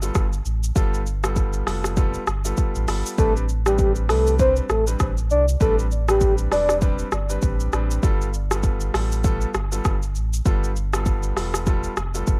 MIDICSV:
0, 0, Header, 1, 5, 480
1, 0, Start_track
1, 0, Tempo, 606061
1, 600, Time_signature, 4, 2, 24, 8
1, 9818, End_track
2, 0, Start_track
2, 0, Title_t, "Soft synth lead"
2, 0, Program_c, 0, 80
2, 2525, Note_on_c, 0, 69, 114
2, 2641, Note_off_c, 0, 69, 0
2, 2905, Note_on_c, 0, 67, 84
2, 3106, Note_off_c, 0, 67, 0
2, 3245, Note_on_c, 0, 69, 84
2, 3447, Note_off_c, 0, 69, 0
2, 3486, Note_on_c, 0, 72, 92
2, 3601, Note_off_c, 0, 72, 0
2, 3726, Note_on_c, 0, 69, 80
2, 3842, Note_off_c, 0, 69, 0
2, 4204, Note_on_c, 0, 74, 89
2, 4321, Note_off_c, 0, 74, 0
2, 4445, Note_on_c, 0, 69, 110
2, 4561, Note_off_c, 0, 69, 0
2, 4824, Note_on_c, 0, 67, 82
2, 5026, Note_off_c, 0, 67, 0
2, 5165, Note_on_c, 0, 74, 72
2, 5367, Note_off_c, 0, 74, 0
2, 9818, End_track
3, 0, Start_track
3, 0, Title_t, "Grand piano"
3, 0, Program_c, 1, 0
3, 15, Note_on_c, 1, 55, 78
3, 17, Note_on_c, 1, 59, 75
3, 18, Note_on_c, 1, 65, 76
3, 20, Note_on_c, 1, 69, 89
3, 187, Note_off_c, 1, 55, 0
3, 188, Note_off_c, 1, 59, 0
3, 189, Note_off_c, 1, 65, 0
3, 190, Note_off_c, 1, 69, 0
3, 597, Note_on_c, 1, 55, 93
3, 599, Note_on_c, 1, 59, 87
3, 600, Note_on_c, 1, 65, 88
3, 601, Note_on_c, 1, 69, 108
3, 788, Note_off_c, 1, 55, 0
3, 789, Note_off_c, 1, 59, 0
3, 789, Note_off_c, 1, 65, 0
3, 790, Note_off_c, 1, 69, 0
3, 977, Note_on_c, 1, 55, 83
3, 978, Note_on_c, 1, 59, 72
3, 979, Note_on_c, 1, 65, 71
3, 981, Note_on_c, 1, 69, 86
3, 1294, Note_off_c, 1, 55, 0
3, 1295, Note_off_c, 1, 59, 0
3, 1296, Note_off_c, 1, 65, 0
3, 1297, Note_off_c, 1, 69, 0
3, 1317, Note_on_c, 1, 55, 77
3, 1318, Note_on_c, 1, 59, 76
3, 1320, Note_on_c, 1, 65, 71
3, 1322, Note_on_c, 1, 69, 90
3, 1542, Note_off_c, 1, 55, 0
3, 1543, Note_off_c, 1, 59, 0
3, 1544, Note_off_c, 1, 65, 0
3, 1545, Note_off_c, 1, 69, 0
3, 1557, Note_on_c, 1, 55, 98
3, 1559, Note_on_c, 1, 59, 89
3, 1560, Note_on_c, 1, 65, 86
3, 1562, Note_on_c, 1, 69, 105
3, 1748, Note_off_c, 1, 55, 0
3, 1749, Note_off_c, 1, 59, 0
3, 1750, Note_off_c, 1, 65, 0
3, 1750, Note_off_c, 1, 69, 0
3, 1937, Note_on_c, 1, 55, 80
3, 1939, Note_on_c, 1, 59, 76
3, 1941, Note_on_c, 1, 65, 77
3, 1942, Note_on_c, 1, 69, 90
3, 2255, Note_off_c, 1, 55, 0
3, 2256, Note_off_c, 1, 59, 0
3, 2256, Note_off_c, 1, 65, 0
3, 2257, Note_off_c, 1, 69, 0
3, 2278, Note_on_c, 1, 55, 84
3, 2279, Note_on_c, 1, 59, 73
3, 2281, Note_on_c, 1, 65, 75
3, 2282, Note_on_c, 1, 69, 91
3, 2503, Note_off_c, 1, 55, 0
3, 2503, Note_off_c, 1, 59, 0
3, 2504, Note_off_c, 1, 65, 0
3, 2505, Note_off_c, 1, 69, 0
3, 2518, Note_on_c, 1, 55, 95
3, 2520, Note_on_c, 1, 60, 85
3, 2521, Note_on_c, 1, 62, 86
3, 2523, Note_on_c, 1, 71, 104
3, 2709, Note_off_c, 1, 55, 0
3, 2709, Note_off_c, 1, 60, 0
3, 2710, Note_off_c, 1, 62, 0
3, 2711, Note_off_c, 1, 71, 0
3, 2897, Note_on_c, 1, 55, 83
3, 2898, Note_on_c, 1, 60, 70
3, 2900, Note_on_c, 1, 62, 70
3, 2902, Note_on_c, 1, 71, 84
3, 3215, Note_off_c, 1, 55, 0
3, 3215, Note_off_c, 1, 60, 0
3, 3216, Note_off_c, 1, 62, 0
3, 3217, Note_off_c, 1, 71, 0
3, 3237, Note_on_c, 1, 55, 82
3, 3239, Note_on_c, 1, 60, 76
3, 3240, Note_on_c, 1, 62, 70
3, 3242, Note_on_c, 1, 71, 86
3, 3462, Note_off_c, 1, 55, 0
3, 3463, Note_off_c, 1, 60, 0
3, 3464, Note_off_c, 1, 62, 0
3, 3465, Note_off_c, 1, 71, 0
3, 3477, Note_on_c, 1, 55, 96
3, 3478, Note_on_c, 1, 60, 84
3, 3480, Note_on_c, 1, 62, 88
3, 3482, Note_on_c, 1, 71, 110
3, 3668, Note_off_c, 1, 55, 0
3, 3669, Note_off_c, 1, 60, 0
3, 3670, Note_off_c, 1, 62, 0
3, 3670, Note_off_c, 1, 71, 0
3, 3856, Note_on_c, 1, 55, 81
3, 3858, Note_on_c, 1, 60, 70
3, 3859, Note_on_c, 1, 62, 74
3, 3860, Note_on_c, 1, 71, 90
3, 4028, Note_off_c, 1, 55, 0
3, 4029, Note_off_c, 1, 60, 0
3, 4029, Note_off_c, 1, 62, 0
3, 4030, Note_off_c, 1, 71, 0
3, 4436, Note_on_c, 1, 55, 98
3, 4437, Note_on_c, 1, 60, 93
3, 4439, Note_on_c, 1, 62, 85
3, 4441, Note_on_c, 1, 71, 105
3, 4628, Note_off_c, 1, 55, 0
3, 4628, Note_off_c, 1, 60, 0
3, 4629, Note_off_c, 1, 62, 0
3, 4630, Note_off_c, 1, 71, 0
3, 4816, Note_on_c, 1, 55, 80
3, 4817, Note_on_c, 1, 60, 76
3, 4819, Note_on_c, 1, 62, 72
3, 4820, Note_on_c, 1, 71, 90
3, 5134, Note_off_c, 1, 55, 0
3, 5135, Note_off_c, 1, 60, 0
3, 5135, Note_off_c, 1, 62, 0
3, 5136, Note_off_c, 1, 71, 0
3, 5157, Note_on_c, 1, 55, 78
3, 5158, Note_on_c, 1, 60, 72
3, 5160, Note_on_c, 1, 62, 71
3, 5161, Note_on_c, 1, 71, 87
3, 5382, Note_off_c, 1, 55, 0
3, 5383, Note_off_c, 1, 60, 0
3, 5384, Note_off_c, 1, 62, 0
3, 5384, Note_off_c, 1, 71, 0
3, 5396, Note_on_c, 1, 55, 100
3, 5398, Note_on_c, 1, 60, 90
3, 5399, Note_on_c, 1, 62, 90
3, 5401, Note_on_c, 1, 71, 107
3, 5588, Note_off_c, 1, 55, 0
3, 5589, Note_off_c, 1, 60, 0
3, 5589, Note_off_c, 1, 62, 0
3, 5590, Note_off_c, 1, 71, 0
3, 5776, Note_on_c, 1, 55, 77
3, 5778, Note_on_c, 1, 60, 72
3, 5779, Note_on_c, 1, 62, 73
3, 5781, Note_on_c, 1, 71, 91
3, 6094, Note_off_c, 1, 55, 0
3, 6095, Note_off_c, 1, 60, 0
3, 6096, Note_off_c, 1, 62, 0
3, 6096, Note_off_c, 1, 71, 0
3, 6118, Note_on_c, 1, 55, 82
3, 6119, Note_on_c, 1, 60, 78
3, 6121, Note_on_c, 1, 62, 77
3, 6122, Note_on_c, 1, 71, 91
3, 6343, Note_off_c, 1, 55, 0
3, 6343, Note_off_c, 1, 60, 0
3, 6344, Note_off_c, 1, 62, 0
3, 6345, Note_off_c, 1, 71, 0
3, 6358, Note_on_c, 1, 55, 97
3, 6359, Note_on_c, 1, 59, 90
3, 6361, Note_on_c, 1, 65, 93
3, 6362, Note_on_c, 1, 69, 109
3, 6548, Note_off_c, 1, 55, 0
3, 6549, Note_off_c, 1, 59, 0
3, 6550, Note_off_c, 1, 65, 0
3, 6551, Note_off_c, 1, 69, 0
3, 6737, Note_on_c, 1, 55, 83
3, 6739, Note_on_c, 1, 59, 77
3, 6740, Note_on_c, 1, 65, 76
3, 6742, Note_on_c, 1, 69, 88
3, 7055, Note_off_c, 1, 55, 0
3, 7056, Note_off_c, 1, 59, 0
3, 7056, Note_off_c, 1, 65, 0
3, 7057, Note_off_c, 1, 69, 0
3, 7077, Note_on_c, 1, 55, 85
3, 7079, Note_on_c, 1, 59, 73
3, 7081, Note_on_c, 1, 65, 70
3, 7082, Note_on_c, 1, 69, 86
3, 7302, Note_off_c, 1, 55, 0
3, 7303, Note_off_c, 1, 59, 0
3, 7304, Note_off_c, 1, 65, 0
3, 7305, Note_off_c, 1, 69, 0
3, 7316, Note_on_c, 1, 55, 97
3, 7319, Note_on_c, 1, 59, 92
3, 7320, Note_on_c, 1, 65, 85
3, 7321, Note_on_c, 1, 69, 113
3, 7508, Note_off_c, 1, 55, 0
3, 7509, Note_off_c, 1, 59, 0
3, 7509, Note_off_c, 1, 65, 0
3, 7510, Note_off_c, 1, 69, 0
3, 7696, Note_on_c, 1, 55, 80
3, 7698, Note_on_c, 1, 59, 76
3, 7700, Note_on_c, 1, 65, 75
3, 7702, Note_on_c, 1, 69, 91
3, 7868, Note_off_c, 1, 55, 0
3, 7869, Note_off_c, 1, 59, 0
3, 7870, Note_off_c, 1, 65, 0
3, 7871, Note_off_c, 1, 69, 0
3, 8278, Note_on_c, 1, 55, 99
3, 8279, Note_on_c, 1, 59, 90
3, 8280, Note_on_c, 1, 65, 88
3, 8283, Note_on_c, 1, 69, 104
3, 8468, Note_off_c, 1, 55, 0
3, 8469, Note_off_c, 1, 59, 0
3, 8470, Note_off_c, 1, 65, 0
3, 8471, Note_off_c, 1, 69, 0
3, 8656, Note_on_c, 1, 55, 79
3, 8658, Note_on_c, 1, 59, 72
3, 8660, Note_on_c, 1, 65, 77
3, 8661, Note_on_c, 1, 69, 91
3, 8974, Note_off_c, 1, 55, 0
3, 8975, Note_off_c, 1, 59, 0
3, 8976, Note_off_c, 1, 65, 0
3, 8977, Note_off_c, 1, 69, 0
3, 8997, Note_on_c, 1, 55, 79
3, 8999, Note_on_c, 1, 59, 72
3, 9000, Note_on_c, 1, 65, 73
3, 9002, Note_on_c, 1, 69, 86
3, 9222, Note_off_c, 1, 55, 0
3, 9223, Note_off_c, 1, 59, 0
3, 9224, Note_off_c, 1, 65, 0
3, 9225, Note_off_c, 1, 69, 0
3, 9237, Note_on_c, 1, 55, 98
3, 9238, Note_on_c, 1, 59, 86
3, 9240, Note_on_c, 1, 65, 91
3, 9242, Note_on_c, 1, 69, 107
3, 9428, Note_off_c, 1, 55, 0
3, 9429, Note_off_c, 1, 59, 0
3, 9430, Note_off_c, 1, 65, 0
3, 9430, Note_off_c, 1, 69, 0
3, 9616, Note_on_c, 1, 55, 78
3, 9618, Note_on_c, 1, 59, 72
3, 9620, Note_on_c, 1, 65, 73
3, 9621, Note_on_c, 1, 69, 89
3, 9818, Note_off_c, 1, 55, 0
3, 9818, Note_off_c, 1, 59, 0
3, 9818, Note_off_c, 1, 65, 0
3, 9818, Note_off_c, 1, 69, 0
3, 9818, End_track
4, 0, Start_track
4, 0, Title_t, "Sub bass"
4, 0, Program_c, 2, 38
4, 0, Note_on_c, 2, 31, 94
4, 83, Note_off_c, 2, 31, 0
4, 121, Note_on_c, 2, 31, 96
4, 324, Note_off_c, 2, 31, 0
4, 361, Note_on_c, 2, 33, 100
4, 564, Note_off_c, 2, 33, 0
4, 601, Note_on_c, 2, 31, 100
4, 1289, Note_off_c, 2, 31, 0
4, 1320, Note_on_c, 2, 29, 93
4, 1727, Note_off_c, 2, 29, 0
4, 1800, Note_on_c, 2, 31, 100
4, 2004, Note_off_c, 2, 31, 0
4, 2180, Note_on_c, 2, 33, 96
4, 2265, Note_off_c, 2, 33, 0
4, 2280, Note_on_c, 2, 31, 96
4, 2398, Note_off_c, 2, 31, 0
4, 2521, Note_on_c, 2, 33, 100
4, 3240, Note_on_c, 2, 36, 90
4, 3252, Note_off_c, 2, 33, 0
4, 3647, Note_off_c, 2, 36, 0
4, 3720, Note_on_c, 2, 33, 102
4, 3924, Note_off_c, 2, 33, 0
4, 3961, Note_on_c, 2, 33, 99
4, 4199, Note_on_c, 2, 36, 98
4, 4211, Note_off_c, 2, 33, 0
4, 4403, Note_off_c, 2, 36, 0
4, 4441, Note_on_c, 2, 33, 115
4, 5129, Note_off_c, 2, 33, 0
4, 5160, Note_on_c, 2, 28, 94
4, 5567, Note_off_c, 2, 28, 0
4, 5640, Note_on_c, 2, 31, 100
4, 5844, Note_off_c, 2, 31, 0
4, 5881, Note_on_c, 2, 33, 100
4, 6084, Note_off_c, 2, 33, 0
4, 6121, Note_on_c, 2, 33, 103
4, 6324, Note_off_c, 2, 33, 0
4, 6360, Note_on_c, 2, 31, 105
4, 7048, Note_off_c, 2, 31, 0
4, 7081, Note_on_c, 2, 33, 96
4, 7487, Note_off_c, 2, 33, 0
4, 7560, Note_on_c, 2, 31, 92
4, 7763, Note_off_c, 2, 31, 0
4, 7801, Note_on_c, 2, 31, 89
4, 8040, Note_on_c, 2, 33, 95
4, 8052, Note_off_c, 2, 31, 0
4, 8243, Note_off_c, 2, 33, 0
4, 8281, Note_on_c, 2, 31, 113
4, 8969, Note_off_c, 2, 31, 0
4, 9000, Note_on_c, 2, 28, 97
4, 9407, Note_off_c, 2, 28, 0
4, 9480, Note_on_c, 2, 29, 94
4, 9683, Note_off_c, 2, 29, 0
4, 9722, Note_on_c, 2, 31, 100
4, 9818, Note_off_c, 2, 31, 0
4, 9818, End_track
5, 0, Start_track
5, 0, Title_t, "Drums"
5, 19, Note_on_c, 9, 82, 116
5, 98, Note_off_c, 9, 82, 0
5, 117, Note_on_c, 9, 82, 80
5, 121, Note_on_c, 9, 36, 102
5, 121, Note_on_c, 9, 37, 97
5, 196, Note_off_c, 9, 82, 0
5, 200, Note_off_c, 9, 36, 0
5, 200, Note_off_c, 9, 37, 0
5, 260, Note_on_c, 9, 82, 55
5, 339, Note_off_c, 9, 82, 0
5, 361, Note_on_c, 9, 82, 59
5, 440, Note_off_c, 9, 82, 0
5, 503, Note_on_c, 9, 82, 97
5, 582, Note_off_c, 9, 82, 0
5, 600, Note_on_c, 9, 36, 122
5, 600, Note_on_c, 9, 82, 89
5, 679, Note_off_c, 9, 82, 0
5, 680, Note_off_c, 9, 36, 0
5, 746, Note_on_c, 9, 82, 55
5, 825, Note_off_c, 9, 82, 0
5, 843, Note_on_c, 9, 82, 59
5, 922, Note_off_c, 9, 82, 0
5, 980, Note_on_c, 9, 37, 108
5, 980, Note_on_c, 9, 82, 98
5, 1059, Note_off_c, 9, 37, 0
5, 1059, Note_off_c, 9, 82, 0
5, 1076, Note_on_c, 9, 82, 82
5, 1079, Note_on_c, 9, 36, 99
5, 1156, Note_off_c, 9, 82, 0
5, 1158, Note_off_c, 9, 36, 0
5, 1213, Note_on_c, 9, 82, 66
5, 1292, Note_off_c, 9, 82, 0
5, 1321, Note_on_c, 9, 37, 95
5, 1326, Note_on_c, 9, 46, 70
5, 1326, Note_on_c, 9, 82, 51
5, 1400, Note_off_c, 9, 37, 0
5, 1405, Note_off_c, 9, 46, 0
5, 1405, Note_off_c, 9, 82, 0
5, 1459, Note_on_c, 9, 37, 102
5, 1463, Note_on_c, 9, 82, 102
5, 1538, Note_off_c, 9, 37, 0
5, 1542, Note_off_c, 9, 82, 0
5, 1558, Note_on_c, 9, 82, 81
5, 1561, Note_on_c, 9, 36, 124
5, 1637, Note_off_c, 9, 82, 0
5, 1640, Note_off_c, 9, 36, 0
5, 1694, Note_on_c, 9, 82, 57
5, 1773, Note_off_c, 9, 82, 0
5, 1798, Note_on_c, 9, 82, 52
5, 1801, Note_on_c, 9, 37, 110
5, 1878, Note_off_c, 9, 82, 0
5, 1880, Note_off_c, 9, 37, 0
5, 1939, Note_on_c, 9, 82, 110
5, 2018, Note_off_c, 9, 82, 0
5, 2037, Note_on_c, 9, 82, 85
5, 2041, Note_on_c, 9, 36, 94
5, 2116, Note_off_c, 9, 82, 0
5, 2121, Note_off_c, 9, 36, 0
5, 2180, Note_on_c, 9, 82, 55
5, 2259, Note_off_c, 9, 82, 0
5, 2281, Note_on_c, 9, 46, 85
5, 2281, Note_on_c, 9, 82, 61
5, 2284, Note_on_c, 9, 37, 90
5, 2360, Note_off_c, 9, 46, 0
5, 2360, Note_off_c, 9, 82, 0
5, 2363, Note_off_c, 9, 37, 0
5, 2424, Note_on_c, 9, 82, 104
5, 2503, Note_off_c, 9, 82, 0
5, 2521, Note_on_c, 9, 36, 127
5, 2521, Note_on_c, 9, 82, 84
5, 2600, Note_off_c, 9, 36, 0
5, 2600, Note_off_c, 9, 82, 0
5, 2666, Note_on_c, 9, 82, 54
5, 2745, Note_off_c, 9, 82, 0
5, 2763, Note_on_c, 9, 82, 61
5, 2842, Note_off_c, 9, 82, 0
5, 2900, Note_on_c, 9, 37, 106
5, 2900, Note_on_c, 9, 82, 103
5, 2979, Note_off_c, 9, 37, 0
5, 2979, Note_off_c, 9, 82, 0
5, 2996, Note_on_c, 9, 82, 79
5, 2999, Note_on_c, 9, 36, 97
5, 3075, Note_off_c, 9, 82, 0
5, 3078, Note_off_c, 9, 36, 0
5, 3133, Note_on_c, 9, 82, 64
5, 3212, Note_off_c, 9, 82, 0
5, 3241, Note_on_c, 9, 37, 99
5, 3245, Note_on_c, 9, 46, 69
5, 3245, Note_on_c, 9, 82, 50
5, 3320, Note_off_c, 9, 37, 0
5, 3325, Note_off_c, 9, 46, 0
5, 3325, Note_off_c, 9, 82, 0
5, 3382, Note_on_c, 9, 82, 98
5, 3462, Note_off_c, 9, 82, 0
5, 3477, Note_on_c, 9, 82, 88
5, 3481, Note_on_c, 9, 36, 115
5, 3557, Note_off_c, 9, 82, 0
5, 3560, Note_off_c, 9, 36, 0
5, 3614, Note_on_c, 9, 82, 56
5, 3693, Note_off_c, 9, 82, 0
5, 3718, Note_on_c, 9, 82, 53
5, 3720, Note_on_c, 9, 37, 110
5, 3797, Note_off_c, 9, 82, 0
5, 3799, Note_off_c, 9, 37, 0
5, 3859, Note_on_c, 9, 82, 119
5, 3938, Note_off_c, 9, 82, 0
5, 3957, Note_on_c, 9, 82, 79
5, 3960, Note_on_c, 9, 37, 102
5, 3961, Note_on_c, 9, 36, 98
5, 4036, Note_off_c, 9, 82, 0
5, 4040, Note_off_c, 9, 36, 0
5, 4040, Note_off_c, 9, 37, 0
5, 4099, Note_on_c, 9, 82, 57
5, 4178, Note_off_c, 9, 82, 0
5, 4200, Note_on_c, 9, 82, 59
5, 4279, Note_off_c, 9, 82, 0
5, 4343, Note_on_c, 9, 82, 98
5, 4422, Note_off_c, 9, 82, 0
5, 4439, Note_on_c, 9, 82, 85
5, 4440, Note_on_c, 9, 36, 127
5, 4519, Note_off_c, 9, 82, 0
5, 4520, Note_off_c, 9, 36, 0
5, 4585, Note_on_c, 9, 82, 54
5, 4664, Note_off_c, 9, 82, 0
5, 4683, Note_on_c, 9, 82, 59
5, 4762, Note_off_c, 9, 82, 0
5, 4819, Note_on_c, 9, 37, 112
5, 4819, Note_on_c, 9, 82, 104
5, 4898, Note_off_c, 9, 37, 0
5, 4899, Note_off_c, 9, 82, 0
5, 4915, Note_on_c, 9, 82, 83
5, 4918, Note_on_c, 9, 36, 100
5, 4995, Note_off_c, 9, 82, 0
5, 4998, Note_off_c, 9, 36, 0
5, 5052, Note_on_c, 9, 82, 66
5, 5131, Note_off_c, 9, 82, 0
5, 5160, Note_on_c, 9, 37, 98
5, 5165, Note_on_c, 9, 46, 69
5, 5165, Note_on_c, 9, 82, 48
5, 5240, Note_off_c, 9, 37, 0
5, 5244, Note_off_c, 9, 46, 0
5, 5244, Note_off_c, 9, 82, 0
5, 5298, Note_on_c, 9, 37, 100
5, 5302, Note_on_c, 9, 82, 101
5, 5377, Note_off_c, 9, 37, 0
5, 5381, Note_off_c, 9, 82, 0
5, 5397, Note_on_c, 9, 82, 85
5, 5400, Note_on_c, 9, 36, 123
5, 5476, Note_off_c, 9, 82, 0
5, 5480, Note_off_c, 9, 36, 0
5, 5533, Note_on_c, 9, 82, 59
5, 5613, Note_off_c, 9, 82, 0
5, 5638, Note_on_c, 9, 82, 54
5, 5640, Note_on_c, 9, 37, 111
5, 5717, Note_off_c, 9, 82, 0
5, 5719, Note_off_c, 9, 37, 0
5, 5779, Note_on_c, 9, 82, 112
5, 5858, Note_off_c, 9, 82, 0
5, 5877, Note_on_c, 9, 82, 82
5, 5881, Note_on_c, 9, 36, 96
5, 5956, Note_off_c, 9, 82, 0
5, 5960, Note_off_c, 9, 36, 0
5, 6020, Note_on_c, 9, 82, 57
5, 6099, Note_off_c, 9, 82, 0
5, 6120, Note_on_c, 9, 82, 63
5, 6124, Note_on_c, 9, 37, 97
5, 6200, Note_off_c, 9, 82, 0
5, 6203, Note_off_c, 9, 37, 0
5, 6263, Note_on_c, 9, 82, 102
5, 6343, Note_off_c, 9, 82, 0
5, 6360, Note_on_c, 9, 82, 85
5, 6361, Note_on_c, 9, 36, 127
5, 6439, Note_off_c, 9, 82, 0
5, 6440, Note_off_c, 9, 36, 0
5, 6506, Note_on_c, 9, 82, 52
5, 6585, Note_off_c, 9, 82, 0
5, 6603, Note_on_c, 9, 82, 60
5, 6683, Note_off_c, 9, 82, 0
5, 6741, Note_on_c, 9, 37, 115
5, 6741, Note_on_c, 9, 82, 103
5, 6820, Note_off_c, 9, 37, 0
5, 6820, Note_off_c, 9, 82, 0
5, 6836, Note_on_c, 9, 82, 83
5, 6839, Note_on_c, 9, 36, 99
5, 6915, Note_off_c, 9, 82, 0
5, 6918, Note_off_c, 9, 36, 0
5, 6973, Note_on_c, 9, 82, 66
5, 7053, Note_off_c, 9, 82, 0
5, 7082, Note_on_c, 9, 37, 100
5, 7086, Note_on_c, 9, 46, 71
5, 7086, Note_on_c, 9, 82, 51
5, 7161, Note_off_c, 9, 37, 0
5, 7166, Note_off_c, 9, 46, 0
5, 7166, Note_off_c, 9, 82, 0
5, 7223, Note_on_c, 9, 82, 101
5, 7302, Note_off_c, 9, 82, 0
5, 7318, Note_on_c, 9, 82, 88
5, 7321, Note_on_c, 9, 36, 122
5, 7397, Note_off_c, 9, 82, 0
5, 7400, Note_off_c, 9, 36, 0
5, 7454, Note_on_c, 9, 82, 56
5, 7533, Note_off_c, 9, 82, 0
5, 7557, Note_on_c, 9, 82, 54
5, 7560, Note_on_c, 9, 37, 115
5, 7637, Note_off_c, 9, 82, 0
5, 7639, Note_off_c, 9, 37, 0
5, 7699, Note_on_c, 9, 82, 115
5, 7778, Note_off_c, 9, 82, 0
5, 7797, Note_on_c, 9, 82, 79
5, 7801, Note_on_c, 9, 36, 97
5, 7801, Note_on_c, 9, 37, 100
5, 7876, Note_off_c, 9, 82, 0
5, 7880, Note_off_c, 9, 36, 0
5, 7880, Note_off_c, 9, 37, 0
5, 7939, Note_on_c, 9, 82, 57
5, 8019, Note_off_c, 9, 82, 0
5, 8041, Note_on_c, 9, 82, 61
5, 8120, Note_off_c, 9, 82, 0
5, 8184, Note_on_c, 9, 82, 97
5, 8263, Note_off_c, 9, 82, 0
5, 8280, Note_on_c, 9, 82, 84
5, 8281, Note_on_c, 9, 36, 126
5, 8359, Note_off_c, 9, 82, 0
5, 8360, Note_off_c, 9, 36, 0
5, 8426, Note_on_c, 9, 82, 54
5, 8505, Note_off_c, 9, 82, 0
5, 8523, Note_on_c, 9, 82, 59
5, 8602, Note_off_c, 9, 82, 0
5, 8660, Note_on_c, 9, 37, 109
5, 8660, Note_on_c, 9, 82, 102
5, 8739, Note_off_c, 9, 37, 0
5, 8739, Note_off_c, 9, 82, 0
5, 8756, Note_on_c, 9, 82, 85
5, 8759, Note_on_c, 9, 36, 102
5, 8835, Note_off_c, 9, 82, 0
5, 8838, Note_off_c, 9, 36, 0
5, 8893, Note_on_c, 9, 82, 66
5, 8973, Note_off_c, 9, 82, 0
5, 9001, Note_on_c, 9, 37, 93
5, 9006, Note_on_c, 9, 46, 70
5, 9006, Note_on_c, 9, 82, 50
5, 9081, Note_off_c, 9, 37, 0
5, 9085, Note_off_c, 9, 46, 0
5, 9085, Note_off_c, 9, 82, 0
5, 9138, Note_on_c, 9, 37, 102
5, 9143, Note_on_c, 9, 82, 101
5, 9218, Note_off_c, 9, 37, 0
5, 9222, Note_off_c, 9, 82, 0
5, 9237, Note_on_c, 9, 82, 82
5, 9241, Note_on_c, 9, 36, 118
5, 9316, Note_off_c, 9, 82, 0
5, 9320, Note_off_c, 9, 36, 0
5, 9373, Note_on_c, 9, 82, 58
5, 9453, Note_off_c, 9, 82, 0
5, 9478, Note_on_c, 9, 82, 54
5, 9480, Note_on_c, 9, 37, 107
5, 9557, Note_off_c, 9, 82, 0
5, 9560, Note_off_c, 9, 37, 0
5, 9619, Note_on_c, 9, 82, 113
5, 9699, Note_off_c, 9, 82, 0
5, 9718, Note_on_c, 9, 82, 80
5, 9721, Note_on_c, 9, 36, 96
5, 9797, Note_off_c, 9, 82, 0
5, 9801, Note_off_c, 9, 36, 0
5, 9818, End_track
0, 0, End_of_file